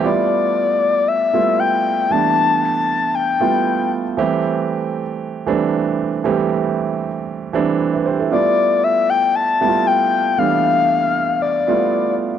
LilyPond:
<<
  \new Staff \with { instrumentName = "Soft synth lead" } { \time 4/4 \key g \mixolydian \tempo 4 = 116 d''2 e''4 g''4 | a''4 a''4 g''4. r8 | r1 | r1 |
d''4 e''8 g''8 a''8 a''8 g''4 | f''2 d''4. r8 | }
  \new Staff \with { instrumentName = "Grand piano" } { \time 4/4 \key g \mixolydian r1 | r1 | r1 | r2. r16 <b' e''>16 <g' c''>16 <e' a'>16~ |
<e' a'>16 r2. r8. | r1 | }
  \new Staff \with { instrumentName = "Grand piano" } { \time 4/4 \key g \mixolydian <g a b e' f'>4. r4 <g a b e' f'>4 r8 | <e g a b d'>4. r4 <g a b e' f'>4 r8 | <e g a c' g'>4. r4 <e g a c' d'>4 r8 | <e g a c' g'>4. r4 <e g a c' d'>4 r8 |
<g a b e' f'>4. r4 <g a b e' f'>4 r8 | <e g a b d'>4. r4 <g a b e' f'>4 r8 | }
>>